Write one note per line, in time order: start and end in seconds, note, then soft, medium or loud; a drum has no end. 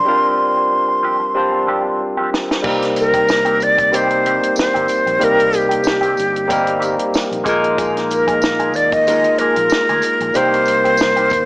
0.00 0.05 G3 medium
0.00 0.06 C4 medium
0.00 0.07 D4 medium
0.00 0.08 F4 medium
0.00 0.09 A#4 medium
0.00 1.38 C5 medium
0.00 2.01 C6 loud
0.05 0.37 F3 medium
0.05 0.91 G3 medium
0.05 0.91 C4 medium
0.05 0.37 C4 medium
0.05 0.92 D4 medium
0.05 0.37 D4 medium
0.05 0.92 F4 medium
0.05 0.38 G4 medium
0.05 0.92 A#4 medium
0.57 muted clean electric guitar stroke soft
0.72 muted clean electric guitar stroke soft
0.89 muted clean electric guitar stroke soft
1.03 1.23 F3 medium
1.03 1.20 C4 medium
1.03 1.19 D4 medium
1.03 1.19 G4 medium
1.20 muted clean electric guitar stroke soft
1.34 2.19 G3 medium
1.34 2.20 C4 medium
1.34 2.20 D4 medium
1.34 2.21 F4 medium
1.34 2.21 C5 medium
1.34 muted clean electric guitar stroke soft
1.53 muted clean electric guitar stroke soft
1.67 1.87 F3 medium
1.67 1.85 C4 medium
1.67 1.84 D4 medium
1.67 1.84 G4 medium
1.85 muted clean electric guitar stroke soft
2.01 muted clean electric guitar stroke soft
2.17 2.31 F3 medium
2.17 2.31 C4 medium
2.17 2.31 D4 medium
2.17 2.31 G4 medium
2.32 muted clean electric guitar stroke soft
2.32 snare loud
2.49 muted clean electric guitar stroke soft
2.49 snare medium
2.63 4.38 C2 loud
2.63 2.84 D#3 medium
2.63 3.48 G3 medium
2.63 3.48 A#3 medium
2.63 2.84 A#3 medium
2.63 3.49 C4 medium
2.63 2.84 C4 medium
2.63 3.49 D#4 medium
2.63 2.84 G4 medium
2.63 3.50 A#4 medium
2.63 kick loud
2.63 crash loud
2.82 snare soft
2.82 closed hi-hat medium
2.96 3.65 A#4 loud
2.96 muted clean electric guitar stroke soft
2.96 closed hi-hat medium
2.96 tambourine soft
3.13 3.28 D#3 soft
3.13 3.27 A#3 soft
3.13 3.27 C4 soft
3.13 3.27 G4 medium
3.13 kick medium
3.13 closed hi-hat medium
3.28 snare loud
3.28 tambourine medium
3.45 3.59 D#3 medium
3.45 3.60 A#3 medium
3.45 3.60 C4 medium
3.45 3.60 G4 medium
3.45 closed hi-hat soft
3.60 3.97 D5 loud
3.60 muted clean electric guitar stroke soft
3.60 closed hi-hat medium
3.60 tambourine soft
3.78 muted clean electric guitar stroke soft
3.78 kick loud
3.78 closed hi-hat medium
3.92 4.12 D#3 medium
3.92 4.77 G3 medium
3.92 4.77 A#3 medium
3.92 4.10 A#3 medium
3.92 4.77 C4 medium
3.92 4.10 C4 medium
3.92 4.78 D#4 medium
3.92 4.09 G4 medium
3.92 4.78 G4 medium
3.92 4.58 C5 loud
3.92 closed hi-hat loud
3.92 tambourine soft
4.10 muted clean electric guitar stroke soft
4.10 closed hi-hat medium
4.25 4.41 D#3 medium
4.25 4.41 A#3 medium
4.25 4.41 C4 medium
4.25 4.41 G4 medium
4.25 closed hi-hat medium
4.42 muted clean electric guitar stroke soft
4.42 closed hi-hat medium
4.56 5.26 C5 loud
4.56 muted clean electric guitar stroke soft
4.56 muted fingered electric bass stroke medium
4.56 snare loud
4.56 tambourine medium
4.74 4.86 G1 medium
4.74 4.88 D#3 medium
4.74 4.88 A#3 medium
4.74 4.88 C4 medium
4.74 4.89 G4 medium
4.74 closed hi-hat soft
4.88 muted clean electric guitar stroke soft
4.88 closed hi-hat medium
4.88 tambourine medium
5.06 5.18 A#1 medium
5.06 muted clean electric guitar stroke soft
5.06 closed hi-hat soft
5.19 6.14 C2 medium
5.19 5.40 D#3 medium
5.19 6.04 G3 medium
5.19 6.05 A#3 medium
5.19 5.40 A#3 medium
5.19 6.05 C4 medium
5.19 5.41 C4 medium
5.19 6.06 D#4 medium
5.19 5.41 G4 medium
5.19 6.06 A#4 medium
5.19 closed hi-hat medium
5.24 5.59 A#4 loud
5.40 closed hi-hat medium
5.52 muted clean electric guitar stroke soft
5.52 closed hi-hat medium
5.52 tambourine soft
5.57 7.48 G4 medium
5.69 5.82 D#3 soft
5.69 5.83 A#3 soft
5.69 5.83 C4 soft
5.69 5.83 G4 medium
5.69 closed hi-hat medium
5.84 muted clean electric guitar stroke soft
5.84 snare loud
5.84 tambourine medium
6.01 6.15 D#3 medium
6.01 6.15 A#3 medium
6.01 6.15 C4 medium
6.01 6.16 G4 medium
6.01 closed hi-hat soft
6.16 6.95 G1 medium
6.16 muted clean electric guitar stroke soft
6.16 closed hi-hat medium
6.16 tambourine soft
6.33 muted clean electric guitar stroke soft
6.33 closed hi-hat medium
6.48 6.68 D#3 medium
6.48 7.33 G3 medium
6.48 6.65 A#3 medium
6.48 7.34 A#3 medium
6.48 6.64 C4 medium
6.48 7.34 C4 medium
6.48 7.35 D#4 medium
6.48 6.64 G4 medium
6.48 7.35 A#4 medium
6.48 kick loud
6.48 closed hi-hat loud
6.48 tambourine soft
6.65 muted clean electric guitar stroke soft
6.65 closed hi-hat medium
6.79 6.96 D#3 medium
6.79 6.97 A#3 medium
6.79 6.97 C4 medium
6.79 6.96 G4 medium
6.79 closed hi-hat medium
6.79 tambourine soft
6.99 closed hi-hat medium
7.14 muted fingered electric bass stroke soft
7.14 snare loud
7.14 tambourine medium
7.30 7.43 A#1 medium
7.30 muted clean electric guitar stroke soft
7.30 closed hi-hat medium
7.44 8.74 A#1 loud
7.44 7.65 F3 medium
7.44 8.49 G#3 loud
7.44 7.62 A#3 medium
7.44 8.49 A#3 medium
7.44 7.61 D#4 medium
7.44 8.50 D#4 medium
7.44 8.50 F4 medium
7.44 7.61 G#4 medium
7.44 kick loud
7.44 closed hi-hat medium
7.44 tambourine soft
7.49 8.51 A#4 loud
7.62 muted clean electric guitar stroke soft
7.62 closed hi-hat soft
7.77 7.97 F3 medium
7.77 7.97 A#3 medium
7.77 7.98 D#4 medium
7.77 7.98 G#4 medium
7.77 kick loud
7.77 closed hi-hat medium
7.77 tambourine soft
7.97 snare soft
7.97 closed hi-hat soft
8.10 8.77 A#4 medium
8.10 muted clean electric guitar stroke soft
8.10 closed hi-hat medium
8.10 tambourine soft
8.27 8.41 F3 soft
8.27 8.41 A#3 soft
8.27 8.41 D#4 medium
8.27 8.41 G#4 medium
8.27 kick loud
8.27 closed hi-hat medium
8.42 muted clean electric guitar stroke soft
8.42 snare loud
8.42 tambourine medium
8.59 8.74 F3 medium
8.59 8.74 A#3 medium
8.59 8.74 D#4 medium
8.59 8.75 G#4 medium
8.59 closed hi-hat medium
8.74 9.25 D#2 medium
8.74 8.95 D5 loud
8.74 muted clean electric guitar stroke soft
8.74 closed hi-hat medium
8.74 tambourine soft
8.92 9.40 D#5 loud
8.92 muted clean electric guitar stroke soft
8.92 kick loud
8.92 closed hi-hat medium
9.07 9.27 F3 medium
9.07 9.91 G#3 medium
9.07 9.91 A#3 medium
9.07 9.25 A#3 medium
9.07 9.92 D#4 medium
9.07 9.25 D#4 medium
9.07 9.92 F4 medium
9.07 9.24 G#4 medium
9.07 9.93 A#4 medium
9.07 closed hi-hat loud
9.07 tambourine soft
9.24 muted clean electric guitar stroke soft
9.24 closed hi-hat soft
9.38 9.55 F3 medium
9.38 9.55 A#3 medium
9.38 9.56 D#4 medium
9.38 9.56 G#4 medium
9.38 10.38 A#4 loud
9.38 muted fingered electric bass stroke medium
9.38 closed hi-hat medium
9.56 9.68 A#1 medium
9.56 muted clean electric guitar stroke soft
9.56 closed hi-hat medium
9.70 muted clean electric guitar stroke soft
9.70 muted fingered electric bass stroke medium
9.70 snare loud
9.70 tambourine medium
9.89 10.01 D2 medium
9.89 10.02 F3 medium
9.89 10.03 A#3 medium
9.89 10.03 D#4 medium
9.89 10.03 G#4 medium
9.89 closed hi-hat soft
10.02 muted clean electric guitar stroke soft
10.02 closed hi-hat medium
10.02 tambourine medium
10.20 10.32 A#1 loud
10.20 muted clean electric guitar stroke soft
10.20 closed hi-hat soft
10.34 11.28 C2 loud
10.34 10.55 D#3 medium
10.34 11.19 G3 medium
10.34 11.19 A#3 medium
10.34 10.55 A#3 medium
10.34 10.55 C4 medium
10.34 11.20 C4 medium
10.34 11.21 D#4 medium
10.34 10.56 G4 medium
10.34 11.21 A#4 medium
10.34 11.45 C5 loud
10.34 closed hi-hat medium
10.34 tambourine soft
10.54 closed hi-hat soft
10.65 muted clean electric guitar stroke soft
10.65 closed hi-hat medium
10.65 tambourine soft
10.84 10.99 D#3 medium
10.84 10.98 A#3 soft
10.84 10.98 C4 medium
10.84 10.98 G4 medium
10.84 closed hi-hat medium
10.97 muted clean electric guitar stroke soft
10.97 snare loud
10.97 tambourine medium
11.16 11.30 D#3 medium
11.16 11.31 A#3 medium
11.16 11.31 C4 medium
11.16 11.32 G4 medium
11.16 closed hi-hat medium
11.30 11.45 G1 loud
11.30 muted clean electric guitar stroke soft
11.30 kick medium
11.30 closed hi-hat medium
11.30 tambourine soft